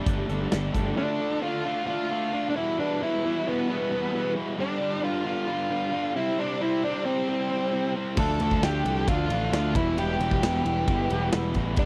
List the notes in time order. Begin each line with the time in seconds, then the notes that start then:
Already playing: G3 A3 D4 G4 D5
0.06 G1 G3 A3 D4 A4, kick, closed hi-hat
0.18 A3 D4 G4
0.29 G1 G3 A3 D4 G4 A4, closed hi-hat
0.41 A3 D4 G4
0.51 G1 G3 A3 D4 G4 A4, snare, closed hi-hat
0.73 G1 G3 A3 D4 G4 A4, kick, closed hi-hat
0.86 A3 D4 G4
0.96 D3 A3 D4 F4 D5
1.21 D3 A3 D4
1.43 D3 A3 D4 F4
1.66 D3 A3 D4
1.87 D3 A3 D4 F4
2.11 D3 A3 D4
2.33 D3 A3 D4
2.50 D4
2.54 E2 B2 E3 G3 E4 B4
2.79 E2 B2 E3 D4
3.01 E2 B2 E3 E4
3.24 E2 B2 E3
3.47 E2 B2 E3 B3
3.69 E2 B2 E3
3.91 E2 B2 E3
4.13 E2 B2 E3
4.35 E2 B2 E3
4.58 G2 D3 G3 D4 B4
4.81 G2 D3 G3
5.02 G2 D3 G3 F4
5.25 G2 D3 G3 F4
5.48 G2 D3 G3
5.70 G2 D3 G3
5.92 G2 D3 G3
6.14 C3 G3 C4 E4 C5
6.39 C3 G3 C4 D4
6.61 C3 G3 C4 E4
6.84 C3 G3 C4 D4
7.05 C3 G3 C4
7.28 C3 G3 C4
7.51 C3 G3 C4
7.73 C3 G3 C4
7.96 C3 G3 C4
8.15 D2 D3 F3 A3 D4 F4 A4, kick, crash
8.19 A3 D4
8.39 D2 D3 A3 D4 F4, ride
8.50 A3 D4 F4, kick
8.62 D2 D3 A3 D4 F4 G4, snare, ride
8.85 C2 D3 A3 D4 F4, ride
8.96 A3 D4 F4
9.08 D2 D3 A3 D4 F4, kick, ride
9.28 A1 D3 A3 D4 F4, ride
9.41 A3 D4 F4
9.50 D2 D3 A3 D4 F4, snare, ride
9.54 A3 D4
9.73 E1 E2 B2 E3 G3 B3 E4 B4, kick, ride
9.96 E1 E2 B2 E3 G3 B3 E4 G4, ride
10.00 B2 E3
10.18 E1 E2 B2 E3 G3 B3 E4, ride
10.22 E3
10.31 E3 G3 B3 E4, kick
10.42 E1 E2 B2 E3 G3 B3 E4, snare, ride
10.54 snare
10.63 E1 E2 B2 E3 G3 B3 E4, ride
10.75 E3 G3 B3 E4
10.88 G1 E2 B2 E3, kick, ride
11.10 E1 E2 B2 E3 G3 B3 E4, ride
11.22 E3 G3 B3 E4
11.32 E1 E2 B2 E3 G3 B3 E4, snare, ride
11.54 A1 E2 B2 E3 G3 B3 E4, kick, ride
11.76 G1 G2 D3 G3 B3 D4 G4 B4, kick, ride
11.81 G3 D4